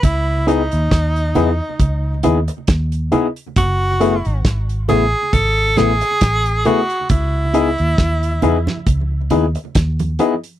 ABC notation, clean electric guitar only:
X:1
M:4/4
L:1/8
Q:"Swing 16ths" 1/4=68
K:C#m
V:1 name="Clean electric guitar"
z [EBd] z [EBd] z [EBd] z [EBd] | z [ABe] z [ABe] z [ABe] z [ABe] | z [EBd] z [EBd] z [EBd] z [EBd] |]